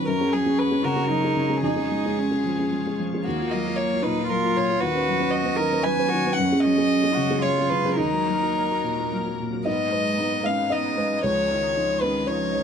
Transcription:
Already playing: felt piano D#3 F#3 C#4 B4, ambient pad F#4
0.06 felt piano F#2, ambient pad G#3 C#5, cello C#4, violin A#4
0.21 felt piano C#4 G#4
0.33 felt piano F#3, violin G#4
0.46 felt piano C#4 G#4
0.59 violin B4
0.71 felt piano C#4 G#4
0.84 felt piano C#3, cello F#4, violin A#4
0.96 felt piano C#4 G#4
1.10 felt piano F#3, cello D#4
1.23 felt piano C#4 G#4
1.37 felt piano C#3
1.49 felt piano C#4 G#4
1.63 felt piano F2, cello D#4, ambient pad F4, violin G#4
1.76 felt piano C#4 G#4
1.91 felt piano G#3
2.05 felt piano C#4 G#4
2.19 cello C#4
2.31 felt piano C#4 G#4
2.45 felt piano F3
2.59 felt piano C#4 G#4
2.72 felt piano G#3
2.86 felt piano C#4 G#4
3.00 felt piano F3
3.14 felt piano C#4 G#4
3.24 felt piano D#2, ambient pad F#3 A#3 F5, cello A#3, violin F#4
3.40 felt piano F4 A#4
3.51 felt piano F#3, violin D#5
3.67 felt piano F4 A#4
3.77 violin C#5
3.93 felt piano F4 A#4
4.03 felt piano A#2, cello D#4, violin B4
4.18 felt piano F4 A#4
4.27 felt piano F#3, cello F4, violin A#4
4.44 felt piano F4 A#4
4.56 felt piano A#2, violin C#5
4.70 felt piano F4 A#4
4.80 felt piano D#2, ambient pad B3 C#5, cello F#4, violin B4
4.95 felt piano C#4 B4
5.08 felt piano F#3
5.20 felt piano C#4 B4
5.31 violin D#5
5.45 felt piano C#4 B4
5.57 felt piano D#3, cello A#4
5.72 felt piano C#4 B4
5.83 felt piano F#3, cello B4, violin G#5
5.99 felt piano C#4 B4
6.09 felt piano D#3, cello F#4
6.26 felt piano C#4 B4
6.33 ambient pad G#3, cello C#4, violin F#5
6.39 felt piano F#2
6.52 felt piano C#4 G#4
6.60 violin D#5
6.65 felt piano F#3
6.78 felt piano C#4 G#4
7.04 felt piano C#4 G#4
7.14 felt piano C#3, cello F#4
7.30 felt piano C#4 G#4
7.42 felt piano F#3, cello F4, violin C#5
7.58 felt piano C#4 G#4
7.70 felt piano C#3, violin B4
7.85 felt piano C#4 G#4
7.98 felt piano D#2, ambient pad A#3 A#4, cello D#4, violin A#4
8.13 felt piano F#4 A#4
8.28 felt piano F#3
8.42 felt piano F#4 A#4
8.71 felt piano F#4 A#4
8.84 felt piano A#2
8.99 felt piano F#4 A#4
9.13 felt piano F#3
9.27 felt piano F#4 A#4
9.40 felt piano A#2
9.52 felt piano F#4 A#4
9.66 felt piano G#2 D#5, ambient pad G#3 D#4 B4, cello B3, violin D#5
9.90 cello G#3, felt piano B4
10.18 cello B3, felt piano D#4
10.43 cello G#3, felt piano C#4 F5, violin F5
10.69 cello B3, felt piano D#4 D#5, violin D#5
10.97 cello G#3, felt piano B4
11.23 felt piano C#2 C#5, cello F3, ambient pad F4 D#5, violin C#5
11.51 cello D#3, felt piano C#5
11.76 cello F3, felt piano D#4
12.01 cello D#3, felt piano C#4 B4, violin B4
12.27 cello F3, felt piano D#4 C#5, violin C#5
12.54 cello D#3, felt piano C#5

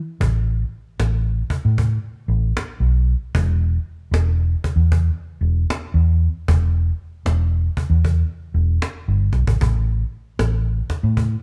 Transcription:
0.20 fingered electric bass A1, cajon bass
1.00 fingered electric bass A1, cajon slap
1.50 cajon bass
1.65 fingered electric bass A2
1.78 cajon bass
2.28 fingered electric bass A1
2.57 cajon slap
2.80 fingered electric bass B1
3.35 fingered electric bass E1, cajon bass
4.11 fingered electric bass E1, cajon slap
4.64 cajon bass, cajon slap
4.76 fingered electric bass E2
4.92 cajon bass
5.41 fingered electric bass E1
5.70 cajon slap
5.94 fingered electric bass E2
6.48 fingered electric bass E1, cajon bass
7.25 fingered electric bass E1, cajon slap
7.77 cajon bass
7.90 fingered electric bass E2
8.05 cajon bass
8.54 fingered electric bass E1
8.82 cajon slap
9.08 fingered electric bass G1
9.33 fingered electric bass B1, cajon slap
9.47 fingered electric bass A1, cajon bass
9.61 fingered electric bass A1, cajon bass
10.39 fingered electric bass A1, cajon slap
10.90 cajon bass, cajon slap
11.03 fingered electric bass A2
11.17 cajon bass

